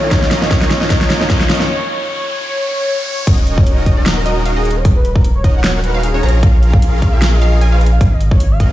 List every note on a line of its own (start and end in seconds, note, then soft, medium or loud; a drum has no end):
0.00 0.10 C#4 medium
0.00 0.10 D#4 medium
0.00 0.10 F4 medium
0.00 0.10 A#4 medium
0.00 0.10 C#5 medium
0.00 0.10 D#5 medium
0.00 riser medium
0.10 0.30 D#3 loud
0.10 0.30 A#3 medium
0.10 0.49 C#4 loud
0.10 0.49 D#4 medium
0.10 0.49 F4 medium
0.10 0.30 F4 medium
0.10 0.49 A#4 medium
0.10 0.34 C#5 loud
0.10 0.31 C#5 loud
0.10 0.49 D#5 loud
0.10 kick loud
0.10 snare medium
0.10 closed hi-hat medium
0.22 snare medium
0.31 snare loud
0.31 closed hi-hat medium
0.41 0.48 D#3 medium
0.41 0.49 A#3 medium
0.41 0.49 F4 medium
0.41 0.49 C#5 medium
0.41 0.50 C#5 loud
0.41 snare medium
0.50 0.69 D#3 loud
0.50 0.69 A#3 medium
0.50 0.89 C#4 loud
0.50 0.89 D#4 medium
0.50 0.70 F4 medium
0.50 0.89 F4 medium
0.50 0.89 A#4 medium
0.50 0.74 C#5 loud
0.50 0.70 C#5 loud
0.50 0.89 D#5 loud
0.50 kick loud
0.50 snare loud
0.50 closed hi-hat medium
0.62 snare medium
0.71 snare medium
0.71 closed hi-hat medium
0.80 0.88 D#3 loud
0.80 0.88 A#3 medium
0.80 0.89 F4 medium
0.80 0.89 C#5 medium
0.80 0.89 C#5 loud
0.80 snare medium
0.89 1.09 D#3 medium
0.89 1.09 A#3 medium
0.89 1.28 C#4 medium
0.89 1.28 D#4 medium
0.89 1.28 F4 medium
0.89 1.09 F4 medium
0.89 1.28 A#4 medium
0.89 1.13 C#5 loud
0.89 1.10 C#5 loud
0.89 1.28 D#5 loud
0.89 kick loud
0.89 snare loud
0.89 closed hi-hat medium
1.01 snare medium
1.10 snare loud
1.10 closed hi-hat medium
1.20 1.27 D#3 loud
1.20 1.28 A#3 medium
1.20 1.28 F4 medium
1.20 1.28 C#5 medium
1.20 1.29 C#5 loud
1.20 snare medium
1.29 1.48 D#3 medium
1.29 1.48 A#3 medium
1.29 1.68 C#4 loud
1.29 1.68 D#4 medium
1.29 1.49 F4 medium
1.29 1.68 F4 medium
1.29 1.68 A#4 medium
1.29 1.53 C#5 loud
1.29 1.49 C#5 loud
1.29 1.68 D#5 loud
1.29 kick loud
1.29 snare loud
1.29 closed hi-hat medium
1.41 snare medium
1.49 snare loud
1.49 closed hi-hat soft
1.55 closed hi-hat medium
1.59 1.67 D#3 loud
1.59 1.68 A#3 medium
1.59 1.68 F4 loud
1.59 1.68 C#5 medium
1.59 1.68 C#5 loud
1.59 snare medium
1.69 1.88 C#5 loud
1.89 2.07 C#5 loud
2.09 2.27 C#5 loud
2.29 2.47 C#5 loud
2.48 2.67 C#5 loud
2.68 2.86 C#5 loud
2.88 3.06 C#5 loud
3.07 3.26 C#5 loud
3.27 6.21 D#1 medium
3.27 3.84 C#4 loud
3.27 3.84 D#4 medium
3.27 3.84 F#4 medium
3.27 3.84 A#4 medium
3.27 3.50 C#5 loud
3.27 3.84 D#5 loud
3.27 kick loud
3.27 closed hi-hat medium
3.27 crash loud
3.47 closed hi-hat medium
3.58 3.80 C#5 loud
3.58 kick loud
3.67 closed hi-hat medium
3.86 3.95 C#4 loud
3.86 3.95 F#4 medium
3.86 3.95 A#4 medium
3.86 4.09 C#5 loud
3.86 3.95 D#5 loud
3.86 kick medium
3.86 closed hi-hat medium
3.97 4.24 C#4 medium
3.97 4.24 D#4 medium
3.97 4.24 F#4 medium
3.97 4.24 A#4 medium
3.97 4.24 D#5 medium
4.06 snare loud
4.06 closed hi-hat medium
4.17 4.46 A#4 loud
4.26 4.43 C#4 loud
4.26 4.43 D#4 medium
4.26 4.43 F#4 loud
4.26 4.43 A#4 loud
4.26 4.43 D#5 loud
4.26 closed hi-hat medium
4.45 4.54 C#4 medium
4.45 4.54 D#4 medium
4.45 4.54 F#4 medium
4.45 4.54 A#4 medium
4.45 4.54 F5 medium
4.45 closed hi-hat medium
4.56 4.69 C#4 medium
4.56 4.69 D#4 medium
4.56 4.69 F#4 medium
4.56 4.78 G#4 medium
4.56 4.69 A#4 medium
4.56 4.69 D#5 medium
4.65 closed hi-hat medium
4.71 closed hi-hat medium
4.76 4.91 C#5 medium
4.85 kick loud
4.85 closed hi-hat medium
4.96 5.11 B4 loud
5.05 closed hi-hat medium
5.16 5.30 A#4 medium
5.16 kick loud
5.24 closed hi-hat medium
5.35 5.58 C#5 loud
5.44 5.53 C#4 loud
5.44 5.53 D#4 medium
5.44 5.53 F#4 medium
5.44 5.53 A#4 medium
5.44 5.53 D#5 loud
5.44 kick medium
5.44 closed hi-hat medium
5.55 5.92 C#4 medium
5.55 5.92 D#4 medium
5.55 5.92 F#4 medium
5.55 5.92 A#4 medium
5.55 5.92 F#5 loud
5.64 5.80 C#5 medium
5.64 snare loud
5.64 closed hi-hat medium
5.84 5.99 B4 medium
5.84 closed hi-hat medium
5.94 6.07 C#4 medium
5.94 6.07 D#4 medium
5.94 6.07 F#4 medium
5.94 6.07 A#4 medium
5.94 6.07 F5 medium
5.94 6.07 F5 loud
6.03 6.25 G#4 medium
6.03 closed hi-hat medium
6.14 6.21 C#4 medium
6.14 6.21 D#4 medium
6.14 6.21 F#4 medium
6.14 6.21 A#4 medium
6.14 6.21 C#5 loud
6.23 7.99 A#1 medium
6.23 6.41 C#4 medium
6.23 6.41 F4 medium
6.23 6.41 G#4 medium
6.23 6.41 A#4 medium
6.23 6.39 C#5 loud
6.23 6.41 A#5 loud
6.23 closed hi-hat medium
6.29 closed hi-hat medium
6.43 7.00 C#4 loud
6.43 7.00 F4 medium
6.43 7.00 G#4 medium
6.43 7.00 A#4 medium
6.43 6.66 F5 loud
6.43 7.00 F5 loud
6.43 kick loud
6.43 closed hi-hat medium
6.63 closed hi-hat medium
6.73 6.96 F5 loud
6.73 kick loud
6.82 closed hi-hat medium
7.02 7.10 C#4 loud
7.02 7.10 F4 medium
7.02 7.10 G#4 medium
7.02 7.10 A#4 medium
7.02 7.34 F5 loud
7.02 7.10 F5 loud
7.02 kick medium
7.02 closed hi-hat medium
7.13 7.39 C#4 medium
7.13 7.39 F4 medium
7.13 7.39 G#4 medium
7.13 7.39 A#4 medium
7.13 7.39 F5 medium
7.22 snare loud
7.22 closed hi-hat medium
7.33 7.74 D#5 loud
7.42 7.59 C#4 loud
7.42 7.59 F4 loud
7.42 7.59 G#4 loud
7.42 7.59 A#4 medium
7.42 7.59 F5 loud
7.42 closed hi-hat medium
7.61 7.70 C#4 medium
7.61 7.70 F4 medium
7.61 7.70 G#4 medium
7.61 7.70 A#4 medium
7.61 7.70 G#5 medium
7.61 closed hi-hat medium
7.72 7.85 C#4 medium
7.72 7.85 F4 medium
7.72 7.85 G#4 medium
7.72 7.85 A#4 medium
7.72 7.87 B4 medium
7.72 7.85 F5 medium
7.81 closed hi-hat medium
7.86 closed hi-hat medium
7.92 8.13 F5 medium
8.01 8.72 G#1 medium
8.01 kick loud
8.01 closed hi-hat medium
8.12 8.26 D#5 medium
8.21 closed hi-hat medium
8.31 8.53 C#5 medium
8.31 kick loud
8.40 closed hi-hat medium
8.51 8.72 F5 medium
8.60 8.69 B3 loud
8.60 8.69 F#4 medium
8.60 8.69 G#4 medium
8.60 8.69 A#4 medium
8.60 8.69 D#5 loud
8.60 kick medium
8.60 closed hi-hat medium